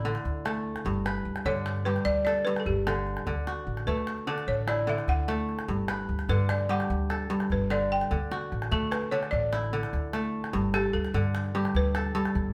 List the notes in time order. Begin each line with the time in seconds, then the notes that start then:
Already playing: A1 A3 D4 E4 F#4 D5
0.05 D3
0.15 calabash click
0.25 D2, calabash thump
0.45 A3, calabash click
0.55 calabash click
0.76 calabash click
0.85 G1 G2, calabash thump, calabash click
1.06 B4, calabash click
1.25 D2
1.36 calabash click
1.45 G2 D3 C#5, calabash thump, calabash click
1.56 calabash click
1.66 calabash click
1.76 calabash click
1.85 G2 G4 B4
1.96 calabash click
2.05 D2 D5, calabash thump, calabash click
2.25 A4 D5, calabash click
2.45 G2 B4
2.56 A4, calabash click
2.66 G1 G4, calabash thump, calabash click
2.87 D3, calabash click
3.07 calabash click
3.17 calabash click
3.26 D2 D3, calabash thump, calabash click
3.47 F#4, calabash click
3.67 A1
3.77 calabash click
3.87 D3 A3 B4, calabash thump, calabash click
3.97 calabash click
4.07 calabash click
4.18 calabash click
4.27 D3 D4 A4
4.38 calabash click
4.47 A1 C#5, calabash thump, calabash click
4.67 E4 D5, calabash click
4.87 D3 E5
4.98 calabash click
5.08 D2 F#5, calabash thump, calabash click
5.28 A3, calabash click
5.49 calabash click
5.59 calabash click
5.68 G1 G2, calabash thump, calabash click
5.88 B4, calabash click
6.09 D2
6.19 calabash click
6.29 G2 D3 B4, calabash thump, calabash click
6.40 calabash click
6.49 D5, calabash click
6.60 calabash click
6.69 G2 G4 F#5
6.80 calabash click
6.90 D2, calabash thump, calabash click
7.10 A4, calabash click
7.30 G2
7.40 calabash click
7.50 G1 B4, calabash thump, calabash click
7.70 D3 D5, calabash click
7.91 G5, calabash click
8.01 calabash click
8.11 D2 D3, calabash thump
8.31 F#4, calabash click
8.42 calabash click
8.52 A1, calabash click
8.62 calabash click
8.71 D3 A3 A4, calabash thump, calabash click
8.91 B4, calabash click
9.02 calabash click
9.11 D3 D4 C#5, calabash click
9.23 calabash click
9.31 A1 D5, calabash thump
9.53 E4, calabash click
9.63 calabash click
9.73 D3
9.83 calabash click
9.93 D2, calabash thump, calabash click
10.13 A3, calabash click
10.44 calabash click
10.53 G1 G2, calabash thump, calabash click
10.74 G4 A4, calabash click
10.93 D2 A4
11.05 calabash click
11.14 G2 D3, calabash thump, calabash click
11.24 calabash click
11.35 calabash click
11.45 calabash click
11.55 G2 G4
11.65 calabash click
11.75 D2 B4, calabash thump, calabash click
11.95 A4, calabash click
12.15 G2 A4
12.25 calabash click
12.35 G1, calabash thump, calabash click